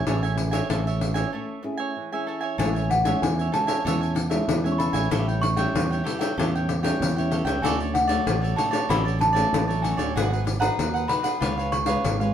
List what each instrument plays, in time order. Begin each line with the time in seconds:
Already playing: celesta A5
0.06 fingered electric bass A1, nylon-string guitar A3 C#4 E4 G#4, cavaquinho A4 C#5 E5 G#5, pandeiro
0.23 cavaquinho C#5 E5 G#5, pandeiro
0.36 nylon-string guitar C#4 E4 G#4, muted cavaquinho stroke, pandeiro
0.51 cavaquinho C#5 E5 G#5, pandeiro
0.69 fingered electric bass A1, nylon-string guitar E3 C#4 E4 G#4, cavaquinho A4 C#5 E5 G#5, pandeiro
0.87 cavaquinho C#5 E5, pandeiro
1.00 nylon-string guitar C#4 E4, pandeiro
1.14 cavaquinho C#5 E5 G#5, pandeiro
1.32 nylon-string guitar A3, cavaquinho A4 C#5 E5
1.63 nylon-string guitar C#4 E4 G#4, muted cavaquinho stroke
1.77 cavaquinho C#5 E5 G#5
1.97 nylon-string guitar E3
2.12 nylon-string guitar C#4 E4 G#4, cavaquinho C#5 E5 G#5
2.27 cavaquinho A4 C#5 E5 G#5
2.41 cavaquinho C#5 E5 G#5
2.58 fingered electric bass A1, nylon-string guitar A2 G#3 C#4, cavaquinho A4 C#5 E5 G#5, celesta G#5, pandeiro
2.75 cavaquinho C#5 E5 G#5, pandeiro
2.90 celesta F#5, muted cavaquinho stroke, pandeiro
3.03 nylon-string guitar G#3 C#4 E4, cavaquinho E5 G#5, pandeiro
3.07 cavaquinho C#5
3.22 fingered electric bass E2, nylon-string guitar E3, celesta G#5, pandeiro
3.39 cavaquinho C#5 E5 G#5, pandeiro
3.52 nylon-string guitar G#3 C#4 E4, cavaquinho A4 C#5 E5 G#5, celesta A5, pandeiro
3.67 cavaquinho C#5 E5 G#5, pandeiro
3.84 fingered electric bass E2, nylon-string guitar A2 G#3 C#4 E4, cavaquinho A4 C#5 E5 G#5, pandeiro
4.01 cavaquinho C#5 E5 G#5, pandeiro
4.15 muted cavaquinho stroke, pandeiro
4.30 nylon-string guitar G#3 C#4 E4, cavaquinho C#5 E5, pandeiro
4.48 fingered electric bass E2, nylon-string guitar E3, pandeiro
4.64 nylon-string guitar G#3 C#4 E4, cavaquinho C#5 E5 G#5, pandeiro
4.72 celesta C#6
4.78 cavaquinho A4 C#5 E5 G#5, celesta B5, pandeiro
4.93 fingered electric bass A1, cavaquinho C#5 E5 G#5, pandeiro
5.10 fingered electric bass A1, nylon-string guitar A2 G3 C#4 E4, cavaquinho G4 A4 C#5 G5, pandeiro
5.28 cavaquinho A4 C#5 G5, pandeiro
5.42 celesta C#6, muted cavaquinho stroke, pandeiro
5.56 nylon-string guitar G3 C#4 E4, cavaquinho A4 C#5 G5, pandeiro
5.75 fingered electric bass E2, pandeiro
5.91 cavaquinho A4 C#5 G5, pandeiro
6.04 nylon-string guitar G3 C#4 E4, cavaquinho G4 A4 C#5 G5, pandeiro
6.19 cavaquinho A4 C#5 G5, pandeiro
6.37 fingered electric bass E2, nylon-string guitar A2 G3 C#4 E4, cavaquinho G4 A4 C#5 G5, pandeiro
6.55 cavaquinho A4 C#5 G5, pandeiro
6.68 muted cavaquinho stroke, pandeiro
6.83 nylon-string guitar G3 C#4 E4, cavaquinho A4 C#5 G5, pandeiro
7.00 fingered electric bass E2, nylon-string guitar E3, pandeiro
7.16 nylon-string guitar G3 C#4 E4, cavaquinho A4 C#5 G5, pandeiro
7.31 cavaquinho G4 A4 C#5 G5, pandeiro
7.45 fingered electric bass C#2, cavaquinho A4 C#5 G5, pandeiro
7.62 fingered electric bass D2, nylon-string guitar D3 F#3 A3 C#4, cavaquinho F#4 A4 C#5 D5, celesta G#5, pandeiro
7.80 cavaquinho A4 C#5 D5, pandeiro
7.94 celesta F#5, muted cavaquinho stroke, pandeiro
8.07 nylon-string guitar F#3 A3, cavaquinho A4 C#5 D5, pandeiro
8.27 fingered electric bass A1, nylon-string guitar A2, pandeiro
8.41 cavaquinho A4 C#5 D5, pandeiro
8.56 nylon-string guitar F#3 A3 C#4, cavaquinho F#4 A4 C#5 D5, celesta A5, pandeiro
8.71 cavaquinho A4 C#5 D5, pandeiro
8.89 fingered electric bass A1, nylon-string guitar D3 F#3 A3 C#4, cavaquinho F#4 A4 C#5 D5, celesta B5, pandeiro
9.05 cavaquinho A4 C#5 D5, pandeiro
9.18 celesta A5, muted cavaquinho stroke, pandeiro
9.33 nylon-string guitar F#3 A3 C#4, cavaquinho A4 C#5 D5, pandeiro
9.52 fingered electric bass A1, nylon-string guitar A2, pandeiro
9.68 nylon-string guitar F#3 A3 C#4, cavaquinho A4 C#5 D5, pandeiro
9.82 cavaquinho F#4 A4 C#5 D5, celesta G#5, pandeiro
9.97 fingered electric bass D2, cavaquinho A4 C#5 D5, pandeiro
10.15 fingered electric bass G#1, nylon-string guitar G#2 F#3 B3 D#4, cavaquinho F#4 G#4 B4 F#5, pandeiro
10.31 cavaquinho G#4 B4 F#5, pandeiro
10.45 muted cavaquinho stroke, pandeiro
10.60 nylon-string guitar F#3 B3 D#4, cavaquinho G#4 B4 F#5, celesta A#5, pandeiro
10.79 fingered electric bass D#2, nylon-string guitar D#3, pandeiro
10.94 cavaquinho G#4 B4 F#5, pandeiro
11.08 nylon-string guitar F#3 B3 D#4, cavaquinho F#4 G#4 B4 F#5, celesta B5, pandeiro
11.23 cavaquinho G#4 B4 F#5, pandeiro
11.40 fingered electric bass C#2, nylon-string guitar C#3 G#3 B3 F4, cavaquinho F4 B4 C#5 F5, pandeiro
11.57 cavaquinho B4 C#5 F5, pandeiro
11.72 celesta C#6, muted cavaquinho stroke, pandeiro
11.85 nylon-string guitar G#3 B3 F4, cavaquinho B4 C#5 F5, pandeiro
12.04 fingered electric bass G#1, nylon-string guitar G#2, pandeiro
12.20 nylon-string guitar G#3 B3 F4, cavaquinho B4 C#5 F5, pandeiro